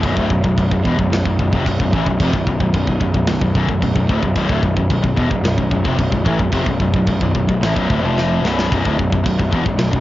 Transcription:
0.04 picked electric bass B0, distorted electric guitar B1 F#2, kick, china
0.17 picked electric bass D1, distorted electric guitar D2 A2, kick
0.30 picked electric bass B0, distorted electric guitar B1 F#2, kick
0.43 picked electric bass B0, distorted electric guitar B1 F#2, kick
0.56 picked electric bass B0, distorted electric guitar B1 F#2, kick, china
0.70 picked electric bass B0, distorted electric guitar B1 F#2, kick
0.83 picked electric bass E1, distorted electric guitar E2 B2, kick
0.97 picked electric bass B0, distorted electric guitar B1 F#2, kick
1.09 picked electric bass B0, distorted electric guitar B1 F#2, china
1.13 snare
1.24 picked electric bass B0, distorted electric guitar B1 F#2, kick
1.37 picked electric bass B0, distorted electric guitar B1 F#2, kick
1.51 picked electric bass F1, distorted electric guitar F2 C3, kick
1.65 picked electric bass B0, distorted electric guitar B1 F#2, kick, china
1.79 picked electric bass B0, distorted electric guitar B1 F#2, kick
1.91 picked electric bass A1, distorted electric guitar A2 E3, kick
2.06 picked electric bass B0, distorted electric guitar B1 F#2, kick
2.19 picked electric bass F1, distorted electric guitar F2 C3, kick, china
2.33 picked electric bass B0, distorted electric guitar B1 F#2, kick
2.46 picked electric bass B0, distorted electric guitar B1 F#2, kick
2.60 picked electric bass B0, distorted electric guitar B1 F#2, kick
2.73 picked electric bass B0, distorted electric guitar B1 F#2, kick, china
2.87 picked electric bass B0, distorted electric guitar B1 F#2, kick
3.00 picked electric bass B0, distorted electric guitar B1 F#2, kick
3.13 picked electric bass B0, distorted electric guitar B1 F#2, kick
3.27 picked electric bass B0, distorted electric guitar B1 F#2, snare, china
3.40 picked electric bass B0, distorted electric guitar B1 F#2, kick
3.54 picked electric bass B0, distorted electric guitar B1 F#2, kick
3.67 picked electric bass B0, distorted electric guitar B1 F#2, kick
3.80 picked electric bass B0, distorted electric guitar B1 F#2, kick, china
3.92 picked electric bass B0, distorted electric guitar B1 F#2, kick
4.06 picked electric bass D1, distorted electric guitar D2 A2, kick
4.22 picked electric bass B0, distorted electric guitar B1 F#2, kick
4.35 picked electric bass B0, distorted electric guitar B1 F#2, kick, china
4.49 picked electric bass D1, distorted electric guitar D2 A2, kick
4.62 picked electric bass B0, distorted electric guitar B1 F#2, kick
4.76 picked electric bass B0, distorted electric guitar B1 F#2, kick
4.90 picked electric bass B0, distorted electric guitar B1 F#2, kick, china
5.03 picked electric bass B0, distorted electric guitar B1 F#2, kick
5.17 picked electric bass E1, distorted electric guitar E2 B2, kick
5.30 picked electric bass B0, distorted electric guitar B1 F#2, kick
5.43 picked electric bass B0, distorted electric guitar B1 F#2, snare, china
5.57 picked electric bass B0, distorted electric guitar B1 F#2, kick
5.71 picked electric bass B0, distorted electric guitar B1 F#2, kick
5.84 picked electric bass F1, distorted electric guitar F2 C3, kick
5.98 picked electric bass B0, distorted electric guitar B1 F#2, kick, china
6.11 picked electric bass B0, distorted electric guitar B1 F#2, kick
6.25 picked electric bass A1, distorted electric guitar A2 E3, kick
6.38 picked electric bass B0, distorted electric guitar B1 F#2, kick
6.52 picked electric bass F1, distorted electric guitar F2 C3, kick, china
6.66 picked electric bass B0, distorted electric guitar B1 F#2, kick
6.80 picked electric bass B0, distorted electric guitar B1 F#2, kick
6.93 picked electric bass B0, distorted electric guitar B1 F#2, kick
7.07 picked electric bass B0, distorted electric guitar B1 F#2, kick, china
7.20 picked electric bass B0, distorted electric guitar B1 F#2, kick
7.35 picked electric bass B0, distorted electric guitar B1 F#2, kick
7.48 picked electric bass B0, distorted electric guitar B1 F#2, kick
7.61 picked electric bass A1, distorted electric guitar A2 E3, snare, china
7.75 picked electric bass B0, distorted electric guitar B1 F#2, kick
7.89 picked electric bass D1, distorted electric guitar D2 A2, kick
8.01 picked electric bass F1, distorted electric guitar F2 C3 F3
8.18 snare
8.42 picked electric bass B0, distorted electric guitar B1 F#2 B2, snare
8.59 snare
8.70 picked electric bass B0, distorted electric guitar B1 F#2, kick, china
8.83 picked electric bass D1, distorted electric guitar D2 A2, kick
8.97 picked electric bass B0, distorted electric guitar B1 F#2, kick
9.10 picked electric bass B0, distorted electric guitar B1 F#2, kick
9.25 picked electric bass B0, distorted electric guitar B1 F#2, kick, china
9.39 picked electric bass B0, distorted electric guitar B1 F#2, kick
9.52 picked electric bass E1, distorted electric guitar E2 B2, kick
9.65 picked electric bass B0, distorted electric guitar B1 F#2, kick
9.78 picked electric bass B0, distorted electric guitar B1 F#2, snare, china
9.93 picked electric bass B0, distorted electric guitar B1 F#2, kick

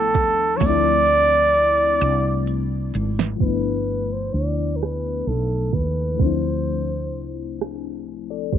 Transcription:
Already playing: fretless electric bass G1, fm electric piano F3 A3 B3 D4 E4, flugelhorn A4
0.14 fretless electric bass D#2, kick, closed hi-hat
0.57 fm electric piano F3 A3, flugelhorn C#5, closed hi-hat
0.61 fretless electric bass D2, fm electric piano C4, kick
0.65 fm electric piano D4 E4, flugelhorn D5
1.06 closed hi-hat
1.54 closed hi-hat
2.01 fretless electric bass C2, closed hi-hat
2.47 closed hi-hat
2.94 fretless electric bass G#1, closed hi-hat
3.19 snare
3.35 fm electric piano F3 A3
3.40 fretless electric bass G1, fm electric piano B3 D4, flugelhorn B4, kick, crash
3.46 fm electric piano E4
4.12 flugelhorn C5
4.34 fretless electric bass D2, flugelhorn D5
4.76 flugelhorn A#4, closed hi-hat
4.81 flugelhorn B4, cross-stick
5.27 fretless electric bass B1, flugelhorn A4
5.73 fretless electric bass D#2, flugelhorn B4, kick, closed hi-hat
6.14 fm electric piano E3 A3
6.19 fretless electric bass D2, fm electric piano F3 C4 D4, flugelhorn C5, kick, closed hi-hat
6.26 fm electric piano E4
7.13 fretless electric bass C2, closed hi-hat
7.59 cross-stick, closed hi-hat
8.06 closed hi-hat
8.30 fm electric piano A4 D5
8.53 fretless electric bass G#1, fm electric piano G4 C5, kick, closed hi-hat

